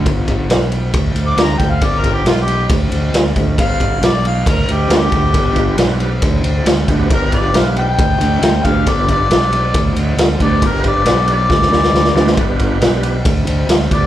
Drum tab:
RD |x-x-x-x-x-x-x-x-|x-x-x-x-x-x-x-x-|x-x-x-x-x-x-x-x-|x-x-x-x-x-x-x-x-|
SD |----o-------o---|----o-------o---|----o-------o---|----o-------o---|
BD |o-o-----o-----o-|o-o-----o-----o-|o-o-----o-----o-|o-o-----o-----o-|

RD |x-x-x-x-x-x-x-x-|x-x-x-x-x-x-x-x-|x-x-x-x---------|x-x-x-x-x-x-x-x-|
SD |----o-------o---|----o-------o---|----o---oooooooo|----o-------o---|
BD |o-o-----o-----o-|o-o-----o-----o-|o-o-----o-------|o-o-----o-----o-|